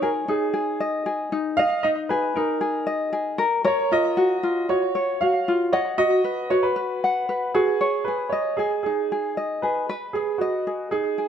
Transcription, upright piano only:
0.02 0.08 A#4 medium
0.29 0.77 G#4 medium
1.57 1.84 F5 loud
1.83 1.89 D#5 loud
2.09 2.36 B4 medium
2.36 2.84 A#4 medium
3.67 3.93 C#5 loud
3.92 4.72 D#5 loud
4.69 5.23 C#5 medium
5.21 5.57 F5 loud
5.72 5.78 C#5 medium
5.98 6.52 D#5 loud
6.50 6.62 C#5 medium
6.63 7.50 B4 medium
7.54 8.08 G#4 medium
8.04 8.32 B4 medium
8.29 8.57 C#5 medium
8.57 8.82 G#4 medium
8.83 9.32 G#4 medium
9.62 10.10 B4 medium
10.13 10.38 G#4 medium
10.38 10.92 F#4 medium
10.91 11.28 G#4 medium

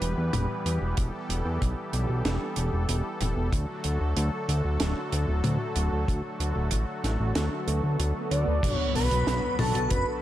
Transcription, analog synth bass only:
0.02 0.15 E1 medium
0.18 0.31 E2 medium
0.34 0.47 E1 loud
0.65 0.79 E2 loud
0.81 0.95 E1 medium
0.98 1.11 E1 loud
1.29 1.43 E1 medium
1.45 1.59 E2 medium
1.62 1.75 B1 loud
1.93 2.07 B1 loud
2.09 2.23 B1 medium
2.25 2.39 E1 loud
2.57 2.71 E1 medium
2.73 2.87 E1 medium
2.89 3.03 E1 loud
3.21 3.35 E1 loud
3.37 3.51 E1 medium
3.52 3.66 D2 loud
3.85 3.98 D2 medium
4.01 4.14 D2 medium
4.17 4.30 D2 loud
4.49 4.62 D2 medium
4.65 4.78 D2 medium
4.81 4.94 D1 loud
5.12 5.26 D2 medium
5.28 5.42 D1 medium
5.44 5.58 D2 loud
5.76 5.90 D1 loud
5.92 6.06 D2 medium
6.08 6.22 D2 loud
6.40 6.54 D2 medium
6.56 6.70 D1 medium
6.72 6.86 A1 loud
7.04 7.18 A1 medium
7.20 7.34 A1 medium
7.36 7.49 D2 loud
7.68 7.81 D2 medium
7.84 7.97 D2 medium
7.99 8.13 D2 loud
8.31 8.45 D2 medium
8.47 8.61 D2 medium
8.63 8.77 B1 loud
8.95 9.09 B1 medium
9.11 9.25 B1 medium
9.27 9.41 B1 loud
9.59 9.73 B1 loud
9.75 9.89 B1 medium
9.91 10.05 F#1 loud

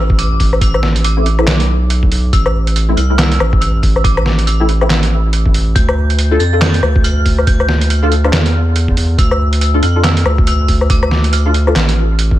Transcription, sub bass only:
0.00 0.60 A1 loud
0.61 1.46 A1 loud
1.47 2.10 B1 loud
2.11 2.32 B1 medium
2.33 2.96 A1 loud
2.97 3.39 C2 loud
3.40 4.03 A1 loud
4.04 4.89 A1 loud
4.90 5.74 A1 loud
5.76 6.39 D2 loud
6.40 6.81 F2 loud
6.83 7.46 D2 loud
7.47 8.31 D2 loud
8.33 8.96 E2 loud
8.97 9.17 E2 medium
9.18 9.81 D2 loud
9.83 10.24 F2 loud
10.26 10.89 D2 loud
10.90 11.74 D2 loud
11.76 12.36 A1 loud
12.36 12.39 G#1 loud

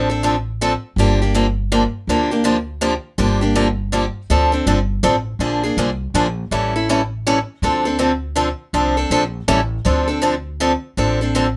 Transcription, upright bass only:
0.00 0.74 A1 medium
0.96 1.85 G1 medium
2.07 2.96 D2 medium
3.18 4.07 G1 medium
4.30 4.59 D2 medium
4.66 4.98 G1 medium
5.03 5.35 A1 medium
5.39 5.69 A#1 medium
5.77 6.09 C2 medium
6.14 6.46 A#1 medium
6.51 7.40 A1 medium
7.62 8.52 D2 medium
8.73 9.05 C2 medium
9.10 9.42 A#1 medium
9.48 9.78 A1 medium
9.85 10.75 D2 medium
10.97 11.57 A1 medium

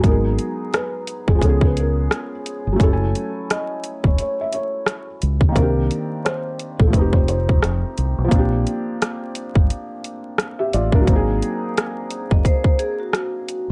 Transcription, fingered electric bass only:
0.04 0.37 G#1 medium
1.29 1.41 F#1 medium
1.42 2.07 C#2 medium
2.67 2.80 G1 medium
2.81 3.13 F#1 medium
4.05 4.18 E1 medium
5.23 5.55 C#2 medium
5.56 5.89 C2 medium
6.80 6.93 A#1 medium
6.94 7.59 F1 loud
7.64 7.83 F1 medium
7.98 8.17 C2 medium
8.18 8.31 B1 medium
8.32 8.65 A#1 medium
9.56 9.69 G1 medium
10.74 11.06 A1 medium
11.08 11.40 G#1 medium
12.32 12.45 F#1 medium

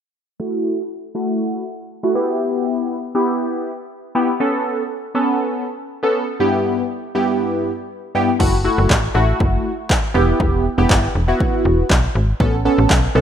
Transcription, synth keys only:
0.40 0.82 A3 medium
0.40 0.82 E4 medium
0.40 0.83 F#4 medium
1.15 1.64 A3 medium
1.15 1.64 E4 medium
1.15 1.64 F#4 medium
2.03 2.15 A3 medium
2.03 2.14 E4 medium
2.03 2.15 F#4 medium
2.15 2.95 B3 medium
2.15 2.95 E4 medium
2.15 2.96 G4 medium
3.15 3.71 B3 medium
3.15 3.71 E4 medium
3.15 3.71 G4 medium
4.15 4.30 B3 medium
4.15 4.30 E4 medium
4.15 4.30 G4 medium
4.40 4.82 B3 medium
4.40 4.83 C#4 medium
4.40 4.83 A4 medium
5.15 5.64 B3 medium
5.15 5.64 C#4 medium
5.15 5.64 A4 medium
6.03 6.24 B3 medium
6.03 6.24 C#4 medium
6.03 6.24 A4 medium
6.40 6.82 G2 medium
6.40 6.82 B3 medium
6.40 6.82 E4 medium
6.40 6.83 G4 medium
7.15 7.71 G2 medium
7.15 7.71 B3 medium
7.15 7.71 E4 medium
7.15 7.71 G4 medium
8.15 8.30 G2 medium
8.15 8.30 B3 medium
8.15 8.30 E4 medium
8.15 8.30 G4 medium
8.39 8.54 A3 medium
8.39 8.55 E4 medium
8.39 8.55 F#4 medium
8.64 8.93 A3 medium
8.64 8.93 E4 medium
8.64 8.93 F#4 medium
9.14 9.71 A3 medium
9.14 9.71 E4 medium
9.14 9.71 F#4 medium
10.14 10.65 B3 medium
10.14 10.65 E4 medium
10.14 10.65 G4 medium
10.78 11.06 B3 medium
10.78 11.06 E4 medium
10.78 11.06 G4 medium
11.28 11.84 B3 medium
11.28 11.84 E4 medium
11.28 11.84 F#4 medium
12.40 12.55 B3 medium
12.40 12.55 C#4 medium
12.40 12.55 A4 medium
12.65 12.93 B3 medium
12.65 12.93 C#4 medium
12.65 12.93 A4 medium
13.15 13.21 B3 medium
13.15 13.21 C#4 medium
13.15 13.21 A4 medium

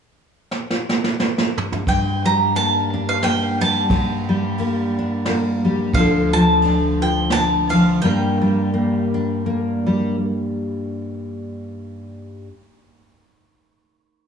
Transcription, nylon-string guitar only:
1.88 3.90 G2 medium
2.25 3.60 G3 soft
2.56 3.23 A#3 soft
2.94 4.98 D4 soft
3.24 4.58 A#3 soft
3.61 3.87 G3 soft
3.91 5.94 G2 medium
4.29 5.63 G3 medium
4.59 5.27 A#3 soft
4.99 5.98 D4 soft
5.28 5.95 A#3 soft
5.65 5.91 G3 medium
5.96 7.98 D3 medium
5.96 6.33 F3 soft
5.96 6.65 D4 soft
5.96 7.02 F4 medium
5.96 7.99 A4 medium
6.34 7.70 F3 medium
6.65 7.33 D4 soft
7.03 7.98 F4 soft
7.33 8.04 D4 soft
7.72 8.01 F3 medium
8.03 12.47 G2 medium
8.03 8.40 G3 soft
8.03 8.72 A#3 soft
8.03 9.13 D4 soft
8.03 10.17 A#4 medium
8.41 9.85 G3 soft
8.74 9.45 A#3 soft
9.14 12.47 D4 soft
9.46 12.47 A#3 soft
9.86 10.15 G3 soft

